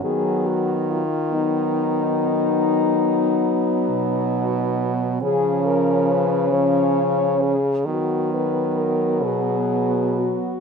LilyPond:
<<
  \new Staff \with { instrumentName = "French horn" } { \time 12/8 \key b \lydian \tempo 4. = 46 gis'8 fis'8 eis'8 dis'1 r8 | gis'8 ais'8 b'8 cis''4 gis'8 fis'8 b'8 ais'8 gis'4 fis'8 | }
  \new Staff \with { instrumentName = "French horn" } { \time 12/8 \key b \lydian b4 r8 b1~ b8 | cis'4. cis'4 r8 b2. | }
  \new Staff \with { instrumentName = "French horn" } { \clef bass \time 12/8 \key b \lydian fis4 r8 fis1~ fis8 | eis4. eis4 r8 fis2. | }
  \new Staff \with { instrumentName = "French horn" } { \clef bass \time 12/8 \key b \lydian dis1 r8 b,4. | cis2. dis4. b,4 r8 | }
>>